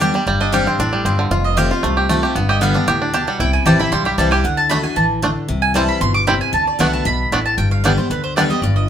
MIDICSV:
0, 0, Header, 1, 5, 480
1, 0, Start_track
1, 0, Tempo, 261324
1, 490, Time_signature, 4, 2, 24, 8
1, 16333, End_track
2, 0, Start_track
2, 0, Title_t, "Mandolin"
2, 0, Program_c, 0, 25
2, 0, Note_on_c, 0, 79, 92
2, 425, Note_off_c, 0, 79, 0
2, 744, Note_on_c, 0, 75, 103
2, 966, Note_off_c, 0, 75, 0
2, 970, Note_on_c, 0, 77, 101
2, 1417, Note_off_c, 0, 77, 0
2, 2653, Note_on_c, 0, 75, 93
2, 2880, Note_off_c, 0, 75, 0
2, 2883, Note_on_c, 0, 77, 102
2, 3333, Note_off_c, 0, 77, 0
2, 4574, Note_on_c, 0, 75, 101
2, 4800, Note_off_c, 0, 75, 0
2, 4809, Note_on_c, 0, 77, 96
2, 5255, Note_off_c, 0, 77, 0
2, 5760, Note_on_c, 0, 81, 88
2, 6006, Note_off_c, 0, 81, 0
2, 6015, Note_on_c, 0, 78, 99
2, 6240, Note_off_c, 0, 78, 0
2, 6250, Note_on_c, 0, 79, 99
2, 6482, Note_off_c, 0, 79, 0
2, 6489, Note_on_c, 0, 80, 106
2, 6712, Note_off_c, 0, 80, 0
2, 6720, Note_on_c, 0, 81, 96
2, 6961, Note_off_c, 0, 81, 0
2, 6968, Note_on_c, 0, 83, 104
2, 7189, Note_off_c, 0, 83, 0
2, 7197, Note_on_c, 0, 84, 123
2, 7435, Note_off_c, 0, 84, 0
2, 7442, Note_on_c, 0, 83, 109
2, 7672, Note_off_c, 0, 83, 0
2, 7682, Note_on_c, 0, 81, 79
2, 7910, Note_off_c, 0, 81, 0
2, 7918, Note_on_c, 0, 80, 94
2, 8149, Note_off_c, 0, 80, 0
2, 8154, Note_on_c, 0, 78, 92
2, 8400, Note_on_c, 0, 81, 108
2, 8402, Note_off_c, 0, 78, 0
2, 8616, Note_off_c, 0, 81, 0
2, 8624, Note_on_c, 0, 83, 109
2, 8872, Note_off_c, 0, 83, 0
2, 8880, Note_on_c, 0, 80, 96
2, 9109, Note_off_c, 0, 80, 0
2, 9116, Note_on_c, 0, 81, 99
2, 9269, Note_off_c, 0, 81, 0
2, 10322, Note_on_c, 0, 80, 112
2, 10548, Note_off_c, 0, 80, 0
2, 10555, Note_on_c, 0, 81, 98
2, 10802, Note_off_c, 0, 81, 0
2, 10810, Note_on_c, 0, 83, 104
2, 11034, Note_off_c, 0, 83, 0
2, 11042, Note_on_c, 0, 84, 108
2, 11277, Note_off_c, 0, 84, 0
2, 11284, Note_on_c, 0, 86, 119
2, 11513, Note_off_c, 0, 86, 0
2, 11523, Note_on_c, 0, 83, 99
2, 11765, Note_off_c, 0, 83, 0
2, 11772, Note_on_c, 0, 80, 103
2, 11997, Note_off_c, 0, 80, 0
2, 12004, Note_on_c, 0, 81, 104
2, 12247, Note_off_c, 0, 81, 0
2, 12258, Note_on_c, 0, 74, 81
2, 12480, Note_off_c, 0, 74, 0
2, 12489, Note_on_c, 0, 78, 98
2, 12729, Note_off_c, 0, 78, 0
2, 12737, Note_on_c, 0, 81, 103
2, 12960, Note_off_c, 0, 81, 0
2, 12971, Note_on_c, 0, 83, 119
2, 13649, Note_off_c, 0, 83, 0
2, 13693, Note_on_c, 0, 81, 95
2, 13909, Note_off_c, 0, 81, 0
2, 13917, Note_on_c, 0, 79, 91
2, 14159, Note_off_c, 0, 79, 0
2, 14166, Note_on_c, 0, 77, 100
2, 14395, Note_off_c, 0, 77, 0
2, 14405, Note_on_c, 0, 74, 87
2, 14646, Note_off_c, 0, 74, 0
2, 14654, Note_on_c, 0, 72, 90
2, 14879, Note_off_c, 0, 72, 0
2, 14887, Note_on_c, 0, 71, 83
2, 15121, Note_off_c, 0, 71, 0
2, 15128, Note_on_c, 0, 72, 101
2, 15351, Note_off_c, 0, 72, 0
2, 15359, Note_on_c, 0, 74, 90
2, 15600, Note_off_c, 0, 74, 0
2, 15607, Note_on_c, 0, 75, 106
2, 15828, Note_off_c, 0, 75, 0
2, 15835, Note_on_c, 0, 74, 88
2, 16081, Note_off_c, 0, 74, 0
2, 16089, Note_on_c, 0, 75, 97
2, 16318, Note_off_c, 0, 75, 0
2, 16333, End_track
3, 0, Start_track
3, 0, Title_t, "Five-string banjo"
3, 0, Program_c, 1, 105
3, 0, Note_on_c, 1, 62, 58
3, 26, Note_on_c, 1, 67, 62
3, 275, Note_on_c, 1, 55, 59
3, 451, Note_off_c, 1, 62, 0
3, 483, Note_off_c, 1, 55, 0
3, 499, Note_off_c, 1, 67, 0
3, 505, Note_on_c, 1, 55, 77
3, 753, Note_on_c, 1, 62, 58
3, 985, Note_on_c, 1, 67, 60
3, 1178, Note_off_c, 1, 55, 0
3, 1235, Note_on_c, 1, 60, 63
3, 1411, Note_off_c, 1, 62, 0
3, 1463, Note_on_c, 1, 62, 71
3, 1658, Note_off_c, 1, 67, 0
3, 1704, Note_on_c, 1, 55, 63
3, 1892, Note_off_c, 1, 60, 0
3, 1932, Note_on_c, 1, 60, 64
3, 2137, Note_off_c, 1, 62, 0
3, 2183, Note_on_c, 1, 50, 63
3, 2367, Note_off_c, 1, 55, 0
3, 2412, Note_off_c, 1, 50, 0
3, 2412, Note_off_c, 1, 60, 0
3, 2413, Note_on_c, 1, 65, 66
3, 2893, Note_on_c, 1, 67, 56
3, 3092, Note_off_c, 1, 65, 0
3, 3143, Note_on_c, 1, 65, 64
3, 3363, Note_on_c, 1, 57, 68
3, 3572, Note_off_c, 1, 67, 0
3, 3618, Note_on_c, 1, 67, 63
3, 3806, Note_off_c, 1, 65, 0
3, 3824, Note_off_c, 1, 57, 0
3, 3846, Note_on_c, 1, 57, 76
3, 4074, Note_off_c, 1, 67, 0
3, 4096, Note_on_c, 1, 67, 60
3, 4326, Note_on_c, 1, 59, 62
3, 4328, Note_off_c, 1, 57, 0
3, 4328, Note_off_c, 1, 67, 0
3, 4576, Note_on_c, 1, 67, 61
3, 4784, Note_off_c, 1, 59, 0
3, 4806, Note_on_c, 1, 59, 62
3, 5056, Note_on_c, 1, 62, 61
3, 5241, Note_off_c, 1, 67, 0
3, 5288, Note_on_c, 1, 67, 67
3, 5487, Note_off_c, 1, 59, 0
3, 5519, Note_off_c, 1, 62, 0
3, 5541, Note_on_c, 1, 62, 66
3, 5750, Note_off_c, 1, 67, 0
3, 5773, Note_on_c, 1, 67, 61
3, 6024, Note_on_c, 1, 55, 61
3, 6203, Note_off_c, 1, 62, 0
3, 6246, Note_on_c, 1, 64, 61
3, 6250, Note_off_c, 1, 67, 0
3, 6251, Note_off_c, 1, 55, 0
3, 6732, Note_on_c, 1, 67, 59
3, 6926, Note_off_c, 1, 64, 0
3, 6988, Note_on_c, 1, 64, 60
3, 7211, Note_on_c, 1, 55, 65
3, 7409, Note_off_c, 1, 67, 0
3, 7461, Note_on_c, 1, 67, 64
3, 7645, Note_off_c, 1, 64, 0
3, 7660, Note_off_c, 1, 55, 0
3, 7682, Note_on_c, 1, 55, 69
3, 7913, Note_off_c, 1, 67, 0
3, 7935, Note_on_c, 1, 67, 65
3, 8164, Note_off_c, 1, 55, 0
3, 8165, Note_off_c, 1, 67, 0
3, 8652, Note_on_c, 1, 57, 65
3, 8658, Note_on_c, 1, 62, 69
3, 8695, Note_off_c, 1, 62, 0
3, 8759, Note_off_c, 1, 57, 0
3, 9613, Note_on_c, 1, 57, 66
3, 9623, Note_on_c, 1, 62, 66
3, 9660, Note_off_c, 1, 62, 0
3, 9720, Note_off_c, 1, 57, 0
3, 10572, Note_on_c, 1, 55, 65
3, 10586, Note_on_c, 1, 60, 68
3, 10594, Note_on_c, 1, 64, 69
3, 10680, Note_off_c, 1, 55, 0
3, 10684, Note_off_c, 1, 60, 0
3, 10684, Note_off_c, 1, 64, 0
3, 11526, Note_on_c, 1, 55, 73
3, 11538, Note_on_c, 1, 60, 69
3, 11545, Note_on_c, 1, 64, 64
3, 11636, Note_off_c, 1, 55, 0
3, 11639, Note_off_c, 1, 60, 0
3, 11645, Note_off_c, 1, 64, 0
3, 12496, Note_on_c, 1, 57, 61
3, 12508, Note_on_c, 1, 59, 68
3, 12508, Note_on_c, 1, 62, 70
3, 12602, Note_off_c, 1, 57, 0
3, 12605, Note_off_c, 1, 59, 0
3, 12607, Note_off_c, 1, 62, 0
3, 13453, Note_on_c, 1, 57, 68
3, 13466, Note_on_c, 1, 59, 69
3, 13475, Note_on_c, 1, 62, 65
3, 13562, Note_off_c, 1, 57, 0
3, 13565, Note_off_c, 1, 59, 0
3, 13566, Note_off_c, 1, 62, 0
3, 14425, Note_on_c, 1, 55, 68
3, 14433, Note_on_c, 1, 59, 70
3, 14438, Note_on_c, 1, 62, 66
3, 14528, Note_off_c, 1, 55, 0
3, 14528, Note_off_c, 1, 59, 0
3, 14533, Note_off_c, 1, 62, 0
3, 15376, Note_on_c, 1, 55, 68
3, 15389, Note_on_c, 1, 59, 67
3, 15390, Note_on_c, 1, 62, 66
3, 15484, Note_off_c, 1, 55, 0
3, 15487, Note_off_c, 1, 59, 0
3, 15490, Note_off_c, 1, 62, 0
3, 16333, End_track
4, 0, Start_track
4, 0, Title_t, "Steel-string acoustic guitar"
4, 0, Program_c, 2, 25
4, 0, Note_on_c, 2, 50, 87
4, 12, Note_on_c, 2, 55, 96
4, 25, Note_on_c, 2, 59, 97
4, 33, Note_on_c, 2, 67, 109
4, 234, Note_off_c, 2, 67, 0
4, 245, Note_off_c, 2, 50, 0
4, 251, Note_off_c, 2, 55, 0
4, 256, Note_on_c, 2, 67, 68
4, 258, Note_off_c, 2, 59, 0
4, 291, Note_on_c, 2, 59, 49
4, 479, Note_off_c, 2, 67, 0
4, 491, Note_on_c, 2, 43, 82
4, 497, Note_off_c, 2, 59, 0
4, 962, Note_on_c, 2, 55, 93
4, 969, Note_on_c, 2, 60, 100
4, 985, Note_on_c, 2, 62, 101
4, 992, Note_on_c, 2, 67, 113
4, 1203, Note_off_c, 2, 67, 0
4, 1207, Note_off_c, 2, 55, 0
4, 1210, Note_off_c, 2, 60, 0
4, 1218, Note_off_c, 2, 62, 0
4, 1225, Note_on_c, 2, 67, 64
4, 1259, Note_on_c, 2, 62, 57
4, 1405, Note_off_c, 2, 43, 0
4, 1444, Note_off_c, 2, 67, 0
4, 1461, Note_off_c, 2, 62, 0
4, 1464, Note_on_c, 2, 45, 89
4, 1915, Note_off_c, 2, 45, 0
4, 1942, Note_on_c, 2, 43, 90
4, 2394, Note_off_c, 2, 43, 0
4, 2407, Note_on_c, 2, 41, 86
4, 2880, Note_on_c, 2, 53, 107
4, 2891, Note_on_c, 2, 57, 109
4, 2906, Note_on_c, 2, 60, 115
4, 2920, Note_on_c, 2, 65, 110
4, 3115, Note_off_c, 2, 65, 0
4, 3125, Note_off_c, 2, 53, 0
4, 3131, Note_off_c, 2, 57, 0
4, 3137, Note_on_c, 2, 65, 67
4, 3138, Note_off_c, 2, 60, 0
4, 3177, Note_on_c, 2, 60, 56
4, 3323, Note_off_c, 2, 41, 0
4, 3360, Note_off_c, 2, 65, 0
4, 3378, Note_on_c, 2, 48, 86
4, 3380, Note_off_c, 2, 60, 0
4, 3847, Note_on_c, 2, 53, 89
4, 3859, Note_on_c, 2, 57, 96
4, 3876, Note_on_c, 2, 60, 91
4, 3883, Note_on_c, 2, 65, 98
4, 4073, Note_off_c, 2, 65, 0
4, 4089, Note_off_c, 2, 53, 0
4, 4095, Note_off_c, 2, 57, 0
4, 4095, Note_on_c, 2, 65, 61
4, 4103, Note_off_c, 2, 60, 0
4, 4128, Note_on_c, 2, 60, 59
4, 4288, Note_off_c, 2, 48, 0
4, 4318, Note_off_c, 2, 65, 0
4, 4332, Note_on_c, 2, 43, 94
4, 4335, Note_off_c, 2, 60, 0
4, 4795, Note_on_c, 2, 50, 99
4, 4809, Note_on_c, 2, 55, 105
4, 4824, Note_on_c, 2, 59, 103
4, 4832, Note_on_c, 2, 67, 117
4, 5015, Note_off_c, 2, 67, 0
4, 5037, Note_on_c, 2, 67, 66
4, 5042, Note_off_c, 2, 50, 0
4, 5049, Note_off_c, 2, 55, 0
4, 5050, Note_off_c, 2, 59, 0
4, 5072, Note_on_c, 2, 59, 54
4, 5244, Note_off_c, 2, 43, 0
4, 5269, Note_off_c, 2, 67, 0
4, 5284, Note_on_c, 2, 45, 90
4, 5286, Note_off_c, 2, 59, 0
4, 5743, Note_off_c, 2, 45, 0
4, 5758, Note_on_c, 2, 47, 91
4, 6220, Note_off_c, 2, 47, 0
4, 6249, Note_on_c, 2, 48, 88
4, 6714, Note_on_c, 2, 52, 105
4, 6729, Note_on_c, 2, 55, 105
4, 6738, Note_on_c, 2, 60, 100
4, 6744, Note_on_c, 2, 64, 115
4, 6949, Note_off_c, 2, 64, 0
4, 6960, Note_off_c, 2, 52, 0
4, 6968, Note_off_c, 2, 55, 0
4, 6971, Note_on_c, 2, 64, 68
4, 6972, Note_off_c, 2, 60, 0
4, 7006, Note_on_c, 2, 60, 54
4, 7161, Note_off_c, 2, 48, 0
4, 7195, Note_off_c, 2, 64, 0
4, 7207, Note_on_c, 2, 43, 88
4, 7212, Note_off_c, 2, 60, 0
4, 7674, Note_on_c, 2, 52, 86
4, 7695, Note_on_c, 2, 55, 98
4, 7701, Note_on_c, 2, 60, 94
4, 7719, Note_on_c, 2, 64, 90
4, 7904, Note_off_c, 2, 64, 0
4, 7920, Note_off_c, 2, 52, 0
4, 7927, Note_on_c, 2, 64, 65
4, 7930, Note_off_c, 2, 55, 0
4, 7933, Note_off_c, 2, 60, 0
4, 7962, Note_on_c, 2, 60, 54
4, 8120, Note_off_c, 2, 43, 0
4, 8152, Note_off_c, 2, 64, 0
4, 8168, Note_on_c, 2, 50, 87
4, 8170, Note_off_c, 2, 60, 0
4, 8601, Note_off_c, 2, 50, 0
4, 8623, Note_on_c, 2, 50, 92
4, 8635, Note_on_c, 2, 57, 100
4, 8646, Note_on_c, 2, 62, 100
4, 8658, Note_on_c, 2, 66, 108
4, 8854, Note_off_c, 2, 66, 0
4, 8874, Note_off_c, 2, 50, 0
4, 8876, Note_on_c, 2, 66, 66
4, 8880, Note_off_c, 2, 57, 0
4, 8885, Note_off_c, 2, 62, 0
4, 8918, Note_on_c, 2, 62, 51
4, 9106, Note_off_c, 2, 66, 0
4, 9112, Note_on_c, 2, 52, 89
4, 9127, Note_off_c, 2, 62, 0
4, 9575, Note_off_c, 2, 52, 0
4, 9595, Note_on_c, 2, 50, 91
4, 10057, Note_off_c, 2, 50, 0
4, 10074, Note_on_c, 2, 48, 91
4, 10545, Note_on_c, 2, 52, 94
4, 10565, Note_on_c, 2, 55, 92
4, 10575, Note_on_c, 2, 60, 98
4, 10583, Note_on_c, 2, 64, 109
4, 10993, Note_off_c, 2, 48, 0
4, 11012, Note_off_c, 2, 52, 0
4, 11022, Note_off_c, 2, 55, 0
4, 11027, Note_off_c, 2, 60, 0
4, 11031, Note_off_c, 2, 64, 0
4, 11038, Note_on_c, 2, 47, 91
4, 11499, Note_off_c, 2, 47, 0
4, 11517, Note_on_c, 2, 48, 90
4, 11978, Note_off_c, 2, 48, 0
4, 11989, Note_on_c, 2, 50, 85
4, 12444, Note_off_c, 2, 50, 0
4, 12466, Note_on_c, 2, 50, 93
4, 12477, Note_on_c, 2, 57, 110
4, 12487, Note_on_c, 2, 59, 110
4, 12498, Note_on_c, 2, 66, 102
4, 12933, Note_off_c, 2, 50, 0
4, 12939, Note_off_c, 2, 57, 0
4, 12944, Note_off_c, 2, 59, 0
4, 12949, Note_off_c, 2, 66, 0
4, 12954, Note_on_c, 2, 47, 95
4, 13418, Note_off_c, 2, 47, 0
4, 13449, Note_on_c, 2, 45, 88
4, 13905, Note_off_c, 2, 45, 0
4, 13921, Note_on_c, 2, 43, 89
4, 14395, Note_on_c, 2, 50, 104
4, 14413, Note_on_c, 2, 55, 92
4, 14416, Note_on_c, 2, 59, 104
4, 14428, Note_on_c, 2, 67, 100
4, 14625, Note_off_c, 2, 67, 0
4, 14642, Note_off_c, 2, 50, 0
4, 14647, Note_on_c, 2, 67, 59
4, 14651, Note_off_c, 2, 55, 0
4, 14653, Note_off_c, 2, 59, 0
4, 14679, Note_on_c, 2, 59, 54
4, 14840, Note_off_c, 2, 43, 0
4, 14874, Note_off_c, 2, 67, 0
4, 14890, Note_off_c, 2, 59, 0
4, 14892, Note_on_c, 2, 50, 92
4, 15350, Note_off_c, 2, 50, 0
4, 15372, Note_on_c, 2, 50, 81
4, 15382, Note_on_c, 2, 55, 89
4, 15399, Note_on_c, 2, 59, 97
4, 15408, Note_on_c, 2, 67, 102
4, 15598, Note_off_c, 2, 67, 0
4, 15611, Note_off_c, 2, 50, 0
4, 15616, Note_off_c, 2, 55, 0
4, 15620, Note_on_c, 2, 67, 66
4, 15625, Note_off_c, 2, 59, 0
4, 15656, Note_on_c, 2, 59, 51
4, 15841, Note_off_c, 2, 67, 0
4, 15859, Note_off_c, 2, 59, 0
4, 15859, Note_on_c, 2, 43, 90
4, 16333, Note_off_c, 2, 43, 0
4, 16333, End_track
5, 0, Start_track
5, 0, Title_t, "Upright bass"
5, 0, Program_c, 3, 32
5, 0, Note_on_c, 3, 38, 91
5, 235, Note_off_c, 3, 38, 0
5, 486, Note_on_c, 3, 31, 95
5, 1197, Note_off_c, 3, 31, 0
5, 1448, Note_on_c, 3, 33, 91
5, 1857, Note_off_c, 3, 33, 0
5, 1926, Note_on_c, 3, 31, 88
5, 2337, Note_off_c, 3, 31, 0
5, 2400, Note_on_c, 3, 29, 95
5, 3113, Note_off_c, 3, 29, 0
5, 3367, Note_on_c, 3, 36, 94
5, 4077, Note_off_c, 3, 36, 0
5, 4321, Note_on_c, 3, 31, 99
5, 5033, Note_off_c, 3, 31, 0
5, 5284, Note_on_c, 3, 38, 97
5, 5994, Note_off_c, 3, 38, 0
5, 6237, Note_on_c, 3, 36, 99
5, 6595, Note_off_c, 3, 36, 0
5, 6718, Note_on_c, 3, 33, 95
5, 7130, Note_off_c, 3, 33, 0
5, 7201, Note_on_c, 3, 35, 97
5, 7611, Note_off_c, 3, 35, 0
5, 7678, Note_on_c, 3, 36, 94
5, 8089, Note_off_c, 3, 36, 0
5, 8154, Note_on_c, 3, 38, 99
5, 8867, Note_off_c, 3, 38, 0
5, 9119, Note_on_c, 3, 33, 85
5, 9830, Note_off_c, 3, 33, 0
5, 10082, Note_on_c, 3, 36, 95
5, 10792, Note_off_c, 3, 36, 0
5, 11038, Note_on_c, 3, 31, 96
5, 11750, Note_off_c, 3, 31, 0
5, 11989, Note_on_c, 3, 38, 89
5, 12350, Note_off_c, 3, 38, 0
5, 12476, Note_on_c, 3, 36, 82
5, 12888, Note_off_c, 3, 36, 0
5, 12956, Note_on_c, 3, 35, 95
5, 13369, Note_off_c, 3, 35, 0
5, 13434, Note_on_c, 3, 33, 81
5, 13848, Note_off_c, 3, 33, 0
5, 13915, Note_on_c, 3, 31, 101
5, 14629, Note_off_c, 3, 31, 0
5, 14878, Note_on_c, 3, 38, 93
5, 15592, Note_off_c, 3, 38, 0
5, 15829, Note_on_c, 3, 31, 101
5, 16333, Note_off_c, 3, 31, 0
5, 16333, End_track
0, 0, End_of_file